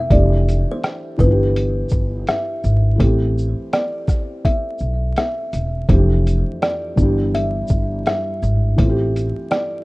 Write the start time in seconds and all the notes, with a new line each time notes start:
Already playing: G4
0.00 E5
0.10 F1 E3 A3 D4 G4 D5, kick, closed hi-hat
0.49 closed hi-hat, shaker
0.72 C5
0.84 cross-stick, closed hi-hat
1.17 G1 E3 B3 B4, kick, shaker
1.22 D4 F4
1.31 G4
1.56 closed hi-hat
1.89 G1, kick, shaker
2.27 E5, cross-stick, closed hi-hat
2.64 G#1, shaker
2.96 E3 A3
3.00 A1 C4 G4 C5, kick, closed hi-hat
3.38 shaker
3.73 D5, cross-stick, closed hi-hat
4.08 kick, cross-stick, shaker
4.45 E5, kick, closed hi-hat
4.78 B1, shaker
5.16 E5, cross-stick, closed hi-hat
5.53 E1, closed hi-hat, shaker
5.89 F1 F2 E3 A3 D4 G4 C5, kick, closed hi-hat
6.27 closed hi-hat, shaker
6.62 D5, cross-stick, closed hi-hat
6.96 G1 G2 E3 B3, kick, shaker
7.01 D4 G4
7.35 E5, closed hi-hat
7.68 G1, kick, shaker
8.06 E5, cross-stick, closed hi-hat
8.42 G#1, shaker
8.76 A1 E3 A3 C5, kick, closed hi-hat
8.81 C4 F4
8.89 G4
9.16 closed hi-hat, shaker
9.51 D5, cross-stick, closed hi-hat